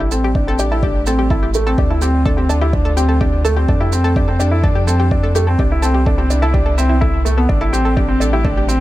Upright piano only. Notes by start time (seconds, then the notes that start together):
0.11 C4
0.35 D4
0.47 C4
0.59 D4
0.71 E4
0.83 D4
1.07 C4
1.30 E4
1.55 A3
1.66 C4
1.79 D4
1.90 E4
2.02 C4
2.25 D4
2.37 C4
2.49 D4
2.62 E4
2.73 D4
2.97 C4
3.21 D4
3.45 A3
3.57 C4
3.69 D4
3.80 E4
3.93 C4
4.16 D4
4.29 C4
4.39 D4
4.51 E4
4.64 D4
4.87 C4
5.11 D4
5.36 A3
5.48 C4
5.60 D4
5.72 E4
5.83 C4
6.07 D4
6.18 C4
6.30 D4
6.42 E4
6.54 D4
6.78 C4
7.01 E4
7.25 A3
7.37 B3
7.49 D4
7.61 E4
7.73 C4
7.97 D4
8.08 C4
8.20 D4
8.33 E4
8.45 D4
8.68 C4